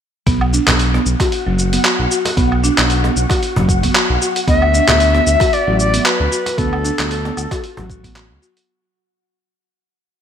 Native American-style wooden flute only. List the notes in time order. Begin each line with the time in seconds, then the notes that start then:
4.48 E5
5.53 D5
5.79 D5
6.06 B4
6.58 A4
7.11 A4
7.57 A4
7.63 F4
7.74 F#4